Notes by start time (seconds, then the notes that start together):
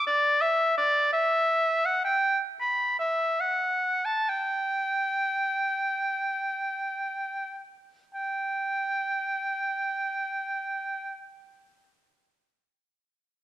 0.07 D5
0.41 E5
0.78 D5
1.13 E5
1.85 F#5
2.04 G5
2.60 B5
2.99 E5
3.40 F#5
4.05 A5
4.29 G5
8.14 G5